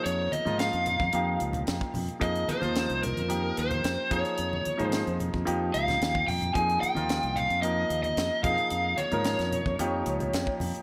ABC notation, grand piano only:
X:1
M:4/4
L:1/16
Q:1/4=111
K:Fm
V:1 name="Grand piano"
[F,B,EA]3 [F,B,EF]4- [F,B,EF] [F,B,EG]6- [F,B,EG] z | [F,B,EA]3 [F,B,EF]4- [F,B,EF] [F,B,EG]6 [F,B,EA]2- | [F,B,EA]3 [F,B,EA]4- [F,B,EA] [F,B,EG]6- [F,B,EG] z | [F,B,EA]3 [F,B,EF]4- [F,B,EF] [F,B,EB]6 [F,B,EA]2- |
[F,B,EA]3 [F,B,EB]4- [F,B,EB] [F,B,EG]6- [F,B,EG] z |]